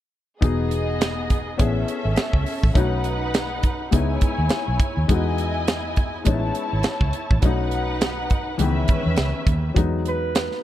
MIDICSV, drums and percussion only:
0, 0, Header, 1, 2, 480
1, 0, Start_track
1, 0, Key_signature, 4, "major"
1, 0, Tempo, 584226
1, 345, Time_signature, 4, 2, 24, 8
1, 8734, End_track
2, 0, Start_track
2, 0, Title_t, "Drums"
2, 347, Note_on_c, 9, 36, 95
2, 348, Note_on_c, 9, 42, 78
2, 430, Note_off_c, 9, 36, 0
2, 430, Note_off_c, 9, 42, 0
2, 585, Note_on_c, 9, 42, 62
2, 667, Note_off_c, 9, 42, 0
2, 830, Note_on_c, 9, 42, 77
2, 836, Note_on_c, 9, 38, 106
2, 912, Note_off_c, 9, 42, 0
2, 918, Note_off_c, 9, 38, 0
2, 1067, Note_on_c, 9, 42, 62
2, 1071, Note_on_c, 9, 36, 72
2, 1150, Note_off_c, 9, 42, 0
2, 1153, Note_off_c, 9, 36, 0
2, 1309, Note_on_c, 9, 42, 98
2, 1311, Note_on_c, 9, 36, 80
2, 1391, Note_off_c, 9, 42, 0
2, 1393, Note_off_c, 9, 36, 0
2, 1546, Note_on_c, 9, 42, 64
2, 1629, Note_off_c, 9, 42, 0
2, 1778, Note_on_c, 9, 42, 72
2, 1787, Note_on_c, 9, 38, 108
2, 1860, Note_off_c, 9, 42, 0
2, 1869, Note_off_c, 9, 38, 0
2, 1918, Note_on_c, 9, 36, 84
2, 2000, Note_off_c, 9, 36, 0
2, 2024, Note_on_c, 9, 46, 58
2, 2106, Note_off_c, 9, 46, 0
2, 2165, Note_on_c, 9, 36, 83
2, 2247, Note_off_c, 9, 36, 0
2, 2262, Note_on_c, 9, 36, 98
2, 2263, Note_on_c, 9, 42, 88
2, 2344, Note_off_c, 9, 36, 0
2, 2345, Note_off_c, 9, 42, 0
2, 2498, Note_on_c, 9, 42, 62
2, 2580, Note_off_c, 9, 42, 0
2, 2745, Note_on_c, 9, 42, 91
2, 2751, Note_on_c, 9, 38, 114
2, 2827, Note_off_c, 9, 42, 0
2, 2833, Note_off_c, 9, 38, 0
2, 2982, Note_on_c, 9, 42, 57
2, 2987, Note_on_c, 9, 36, 74
2, 3064, Note_off_c, 9, 42, 0
2, 3069, Note_off_c, 9, 36, 0
2, 3223, Note_on_c, 9, 42, 101
2, 3228, Note_on_c, 9, 36, 82
2, 3305, Note_off_c, 9, 42, 0
2, 3310, Note_off_c, 9, 36, 0
2, 3460, Note_on_c, 9, 42, 67
2, 3466, Note_on_c, 9, 36, 83
2, 3542, Note_off_c, 9, 42, 0
2, 3548, Note_off_c, 9, 36, 0
2, 3692, Note_on_c, 9, 42, 80
2, 3701, Note_on_c, 9, 38, 98
2, 3774, Note_off_c, 9, 42, 0
2, 3783, Note_off_c, 9, 38, 0
2, 3940, Note_on_c, 9, 36, 97
2, 3943, Note_on_c, 9, 42, 80
2, 4022, Note_off_c, 9, 36, 0
2, 4025, Note_off_c, 9, 42, 0
2, 4182, Note_on_c, 9, 42, 90
2, 4183, Note_on_c, 9, 36, 89
2, 4265, Note_off_c, 9, 36, 0
2, 4265, Note_off_c, 9, 42, 0
2, 4422, Note_on_c, 9, 42, 58
2, 4504, Note_off_c, 9, 42, 0
2, 4663, Note_on_c, 9, 42, 84
2, 4669, Note_on_c, 9, 38, 103
2, 4746, Note_off_c, 9, 42, 0
2, 4751, Note_off_c, 9, 38, 0
2, 4899, Note_on_c, 9, 42, 59
2, 4907, Note_on_c, 9, 36, 76
2, 4981, Note_off_c, 9, 42, 0
2, 4989, Note_off_c, 9, 36, 0
2, 5138, Note_on_c, 9, 42, 98
2, 5148, Note_on_c, 9, 36, 80
2, 5220, Note_off_c, 9, 42, 0
2, 5230, Note_off_c, 9, 36, 0
2, 5380, Note_on_c, 9, 42, 68
2, 5462, Note_off_c, 9, 42, 0
2, 5613, Note_on_c, 9, 42, 79
2, 5622, Note_on_c, 9, 38, 108
2, 5695, Note_off_c, 9, 42, 0
2, 5704, Note_off_c, 9, 38, 0
2, 5757, Note_on_c, 9, 36, 86
2, 5840, Note_off_c, 9, 36, 0
2, 5859, Note_on_c, 9, 42, 80
2, 5941, Note_off_c, 9, 42, 0
2, 6003, Note_on_c, 9, 36, 82
2, 6085, Note_off_c, 9, 36, 0
2, 6097, Note_on_c, 9, 42, 79
2, 6102, Note_on_c, 9, 36, 97
2, 6179, Note_off_c, 9, 42, 0
2, 6184, Note_off_c, 9, 36, 0
2, 6337, Note_on_c, 9, 42, 58
2, 6419, Note_off_c, 9, 42, 0
2, 6582, Note_on_c, 9, 42, 80
2, 6587, Note_on_c, 9, 38, 105
2, 6664, Note_off_c, 9, 42, 0
2, 6669, Note_off_c, 9, 38, 0
2, 6818, Note_on_c, 9, 42, 55
2, 6826, Note_on_c, 9, 36, 78
2, 6900, Note_off_c, 9, 42, 0
2, 6908, Note_off_c, 9, 36, 0
2, 7057, Note_on_c, 9, 42, 90
2, 7139, Note_off_c, 9, 42, 0
2, 7295, Note_on_c, 9, 42, 66
2, 7303, Note_on_c, 9, 36, 82
2, 7377, Note_off_c, 9, 42, 0
2, 7385, Note_off_c, 9, 36, 0
2, 7530, Note_on_c, 9, 42, 74
2, 7539, Note_on_c, 9, 38, 103
2, 7612, Note_off_c, 9, 42, 0
2, 7621, Note_off_c, 9, 38, 0
2, 7778, Note_on_c, 9, 36, 96
2, 7779, Note_on_c, 9, 42, 80
2, 7860, Note_off_c, 9, 36, 0
2, 7861, Note_off_c, 9, 42, 0
2, 8022, Note_on_c, 9, 36, 91
2, 8023, Note_on_c, 9, 42, 79
2, 8104, Note_off_c, 9, 36, 0
2, 8105, Note_off_c, 9, 42, 0
2, 8261, Note_on_c, 9, 42, 59
2, 8343, Note_off_c, 9, 42, 0
2, 8504, Note_on_c, 9, 42, 81
2, 8510, Note_on_c, 9, 38, 106
2, 8587, Note_off_c, 9, 42, 0
2, 8592, Note_off_c, 9, 38, 0
2, 8639, Note_on_c, 9, 38, 28
2, 8721, Note_off_c, 9, 38, 0
2, 8734, End_track
0, 0, End_of_file